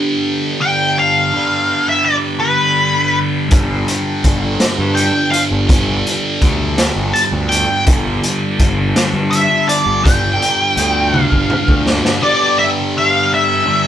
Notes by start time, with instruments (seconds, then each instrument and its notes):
Already playing: distorted electric guitar G2 D3 G3, tonewheel organ B3 D4 G4 B4
0.62 lead electric guitar G5
0.99 lead electric guitar F5
1.32 distorted electric guitar G2 D3 G3
1.88 lead electric guitar E5
2.06 lead electric guitar D5
2.40 lead electric guitar B4
3.49 picked electric bass G1, distorted electric guitar G2 D3 G3, tonewheel organ F4, kick, closed hi-hat
3.88 closed hi-hat
4.24 picked electric bass G1, kick, closed hi-hat
4.60 snare, closed hi-hat
4.78 picked electric bass G2
4.95 lead electric guitar G5, closed hi-hat
5.31 lead electric guitar F5, closed hi-hat
5.51 picked electric bass G1
5.68 picked electric bass G1, distorted electric guitar G2 D3 G3, kick, closed hi-hat
6.07 closed hi-hat
6.42 picked electric bass D2, kick, closed hi-hat
6.78 snare, closed hi-hat
6.96 picked electric bass G1
7.13 lead electric guitar A5, closed hi-hat
7.32 picked electric bass D2
7.49 lead electric guitar G5, closed hi-hat
7.84 picked electric bass G1, distorted electric guitar G2 D3 G3, kick, closed hi-hat
8.23 closed hi-hat
8.59 picked electric bass G1, kick, closed hi-hat
8.96 snare, closed hi-hat
9.13 picked electric bass G2
9.31 lead electric guitar E5, closed hi-hat
9.69 lead electric guitar D5, closed hi-hat
9.86 picked electric bass G1
10.02 picked electric bass G1, distorted electric guitar G2 D3 G3, lead electric guitar G5, kick
10.07 closed hi-hat
10.42 closed hi-hat
10.77 picked electric bass D2, closed hi-hat
11.14 high tom
11.20 lead electric guitar F5
11.32 picked electric bass G1, kick
11.50 mid tom
11.68 picked electric bass D2, kick
11.87 snare
12.05 snare
12.20 distorted electric guitar G2 D3 G3, tonewheel organ B3 D4 G4 B4, lead electric guitar D5
12.59 lead electric guitar E5
12.98 lead electric guitar F5
13.34 lead electric guitar E5
13.65 distorted electric guitar G2 D3 G3